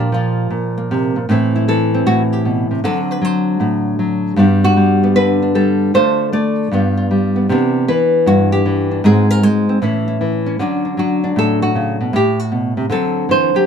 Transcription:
0.00 0.49 A#2 medium
0.00 0.11 F3 medium
0.00 0.76 A#3 medium
0.00 0.12 D4 soft
0.00 0.51 G4 medium
0.12 1.27 F3 medium
0.12 1.29 F4 medium
0.50 1.15 A#2 medium
0.78 1.27 A#3 soft
0.91 1.16 C3 medium
1.16 1.28 A#2 medium
1.29 2.05 A2 medium
1.29 1.67 E3 medium
1.29 1.94 C4 medium
1.29 1.54 E4 medium
1.29 1.68 A4 medium
1.56 2.82 E4 medium
1.68 2.84 E3 medium
1.68 2.06 A4 medium
1.94 2.83 C4 soft
2.06 2.82 A2 medium
2.06 2.21 F#4 loud
2.32 2.84 G4 medium
2.45 2.70 B2 medium
2.71 2.83 C3 medium
2.84 4.37 D3 medium
2.84 3.21 F#3 medium
2.84 4.38 C4 medium
2.84 3.60 F#4 medium
2.84 3.00 A4 loud
3.11 3.25 B4 loud
3.22 3.98 F#3 medium
3.22 4.39 C5 medium
3.60 4.36 A2 medium
3.60 4.36 F#4 soft
3.99 4.36 F#3 medium
4.36 5.91 G2 medium
4.36 4.75 G3 medium
4.36 5.02 B3 medium
4.36 5.42 D4 medium
4.36 4.63 F#4 soft
4.64 5.15 F#4 medium
4.77 5.54 G3 medium
5.04 5.92 B3 soft
5.16 5.92 D3 medium
5.16 5.54 B4 loud
5.42 5.96 D4 soft
5.55 5.92 G3 medium
5.55 5.93 A4 medium
5.94 6.69 D3 medium
5.94 6.31 A3 medium
5.94 6.70 F4 medium
5.94 6.70 A4 medium
5.94 6.32 C5 loud
6.33 6.69 A3 medium
6.33 7.49 D5 medium
6.71 7.47 G2 medium
6.71 7.10 G3 soft
6.71 7.35 B3 medium
6.71 6.96 F4 medium
6.97 7.47 F4 soft
7.11 7.47 G3 medium
7.36 7.47 B3 soft
7.49 7.87 C3 medium
7.49 7.88 E3 medium
7.49 9.03 B3 medium
7.49 8.90 D4 medium
7.88 8.64 E3 medium
7.88 8.26 B4 medium
8.26 9.02 G2 medium
8.26 8.52 F#4 medium
8.52 9.03 G4 loud
8.66 9.03 E3 medium
8.91 9.02 D4 soft
9.04 9.79 G#2 medium
9.04 9.42 G#3 medium
9.04 9.68 C4 medium
9.04 9.80 F#4 medium
9.04 9.30 G#4 loud
9.30 9.43 A#4 medium
9.43 9.79 G#3 medium
9.43 9.81 C5 loud
9.69 9.80 C4 soft
9.82 10.57 A2 medium
9.82 10.20 E3 soft
9.82 10.45 C#4 medium
9.82 10.07 E4 medium
10.08 10.57 E4 medium
10.21 10.59 E3 medium
10.46 10.57 C#4 soft
10.59 11.75 D3 medium
10.59 10.96 F#3 soft
10.59 12.12 C#4 medium
10.59 10.84 D4 medium
10.59 10.98 F#4 medium
10.85 11.23 D4 soft
10.97 12.11 F#3 medium
10.97 11.36 F#4 medium
11.24 12.12 D4 soft
11.36 12.11 A2 medium
11.36 11.62 A4 loud
11.62 12.13 F#4 medium
11.75 12.00 C#3 medium
12.01 12.13 B2 soft
12.13 12.89 A2 medium
12.13 12.40 G4 medium
12.40 12.52 F#4 medium
12.52 12.77 B2 medium
12.77 12.89 C3 medium
12.90 13.66 D3 medium
12.90 13.29 F#3 medium
12.90 13.66 C4 medium
12.90 13.30 A4 medium
13.29 13.54 E3 medium
13.29 13.55 C5 medium
13.54 13.66 F#3 medium
13.54 13.66 G4 medium

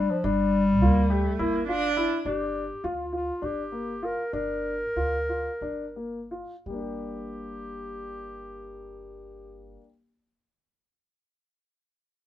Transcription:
0.00 0.12 G3 medium
0.00 0.14 D4 medium
0.10 0.26 F3 medium
0.24 0.82 G1 medium
0.24 1.68 G3 loud
0.24 0.60 D4 medium
0.82 1.26 D2 medium
0.82 1.13 A#3 medium
0.82 1.00 F4 medium
1.10 1.41 A3 medium
1.10 1.28 G4 medium
1.39 2.06 G1 medium
1.39 1.67 A#3 medium
1.39 1.57 E4 medium
1.67 2.21 D4 loud
1.67 1.87 F4 medium
1.97 2.15 E4 medium
2.25 2.70 G1 medium
2.25 2.62 D4 medium
2.25 2.87 G4 medium
2.84 3.29 D2 medium
2.84 3.02 F4 medium
2.84 3.14 F4 medium
3.13 3.31 F4 medium
3.13 3.46 F4 medium
3.42 4.12 G1 medium
3.42 3.61 D4 medium
3.42 4.06 G4 medium
3.72 3.91 A#3 medium
4.02 4.22 F4 medium
4.02 4.34 A#4 medium
4.33 4.82 G1 medium
4.33 4.73 D4 medium
4.33 6.27 A#4 medium
4.96 5.46 D2 medium
4.96 5.17 F4 medium
5.29 5.50 F4 medium
5.61 6.42 G1 medium
5.61 5.83 D4 medium
5.96 6.18 A#3 soft
6.31 6.53 F4 medium
6.66 9.76 G1 medium
6.66 9.76 G3 soft
6.66 9.76 G4 medium
6.70 9.80 A#3 soft
6.70 9.84 D4 soft
6.78 9.88 G4 soft

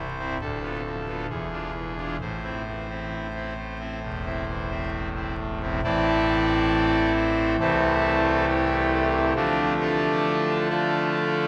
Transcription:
0.00 0.38 C1 medium
0.00 0.38 C2 medium
0.00 0.16 C3 soft
0.00 0.34 C5 medium
0.19 0.38 C4 medium
0.19 0.38 E4 medium
0.41 1.26 D1 medium
0.41 1.26 D2 medium
0.41 1.27 A4 loud
0.62 0.81 B3 medium
0.62 0.81 F4 medium
0.85 1.05 F3 medium
1.08 1.26 B3 soft
1.08 1.26 F4 soft
1.29 2.17 E1 medium
1.29 2.17 E2 medium
1.29 2.17 G#4 medium
1.52 1.71 D4 soft
1.52 1.71 F4 soft
1.74 1.94 E3 soft
1.98 2.16 D4 soft
1.98 2.17 F4 soft
2.20 5.80 A1 medium
2.20 5.80 A2 medium
2.20 4.89 C5 medium
2.44 2.62 C4 soft
2.44 2.62 E4 soft
2.67 2.86 E3 soft
2.89 3.27 C4 soft
2.89 3.27 E4 soft
3.35 3.54 C4 soft
3.35 3.54 E4 soft
3.58 3.77 A3 soft
3.80 3.99 C4 medium
3.80 3.99 E4 medium
4.03 5.80 E1 medium
4.03 5.79 E2 medium
4.26 4.44 C4 soft
4.26 4.45 E4 medium
4.49 4.69 E3 soft
4.70 5.09 C4 soft
4.70 5.09 E4 medium
5.15 5.35 C4 soft
5.15 5.35 E4 soft
5.39 5.59 A3 soft
5.62 5.80 C4 soft
5.62 5.81 E4 soft
5.84 7.56 A1 medium
5.84 7.56 A2 medium
5.84 7.56 E3 medium
5.84 7.56 C4 medium
5.84 7.56 E4 medium
5.84 7.12 A4 loud
5.84 7.12 D5 loud
7.16 7.53 C5 loud
7.60 9.33 C2 medium
7.60 9.33 C3 medium
7.60 9.33 E3 medium
7.60 9.33 A3 medium
7.60 8.46 C4 medium
7.60 8.46 E4 medium
7.60 8.46 A4 loud
8.48 9.34 G4 loud
9.35 11.48 D3 medium
9.35 11.48 F3 medium
9.35 11.48 A3 medium
9.35 9.73 C4 medium
9.35 9.74 D4 medium
9.35 9.74 F4 loud
9.80 10.68 D4 medium
9.80 10.68 F4 medium
9.80 10.68 A4 loud
10.70 11.48 F4 medium
10.70 11.48 A4 medium
10.70 11.48 D5 loud

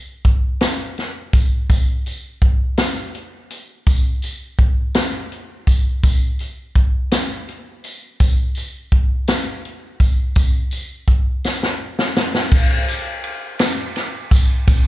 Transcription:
0.25 kick medium
0.25 closed hi-hat medium
0.61 snare medium
0.61 closed hi-hat medium
0.61 tambourine medium
0.98 snare soft
0.98 closed hi-hat soft
1.33 kick medium
1.33 closed hi-hat medium
1.33 tambourine soft
1.69 kick medium
1.69 closed hi-hat medium
1.69 tambourine medium
2.06 closed hi-hat soft
2.06 tambourine soft
2.41 kick medium
2.41 closed hi-hat medium
2.77 snare medium
2.77 closed hi-hat medium
2.77 tambourine medium
3.15 closed hi-hat soft
3.50 closed hi-hat medium
3.50 tambourine soft
3.87 kick loud
3.87 closed hi-hat medium
3.87 tambourine medium
4.22 closed hi-hat soft
4.22 tambourine soft
4.58 kick medium
4.58 closed hi-hat medium
4.94 snare medium
4.94 closed hi-hat medium
4.94 tambourine medium
5.32 closed hi-hat soft
5.67 kick medium
5.67 closed hi-hat medium
5.67 tambourine soft
6.03 kick medium
6.03 closed hi-hat medium
6.03 tambourine soft
6.39 closed hi-hat soft
6.39 tambourine soft
6.75 kick medium
6.75 closed hi-hat medium
7.11 snare medium
7.11 closed hi-hat medium
7.11 tambourine medium
7.49 closed hi-hat soft
7.84 closed hi-hat medium
7.84 tambourine medium
8.20 kick medium
8.20 closed hi-hat medium
8.20 tambourine medium
8.55 closed hi-hat soft
8.55 tambourine soft
8.92 kick medium
8.92 closed hi-hat medium
9.28 snare medium
9.28 closed hi-hat medium
9.28 tambourine medium
9.65 closed hi-hat soft
10.00 kick medium
10.00 closed hi-hat medium
10.00 tambourine soft
10.36 kick loud
10.36 closed hi-hat medium
10.36 tambourine soft
10.71 closed hi-hat soft
10.71 tambourine soft
11.08 kick medium
11.08 closed hi-hat medium
11.44 snare soft
11.44 tambourine medium
11.63 snare soft
11.99 snare medium
12.17 snare medium
12.17 tambourine soft
12.35 snare medium
12.51 kick loud
12.51 crash medium
12.51 tambourine medium
12.88 ride soft
12.88 tambourine medium
13.24 ride soft
13.59 snare medium
13.59 ride medium
13.59 tambourine medium
13.96 snare soft
13.96 ride soft
14.31 kick medium
14.31 ride soft
14.31 tambourine medium
14.67 kick loud
14.67 ride medium
14.67 tambourine medium

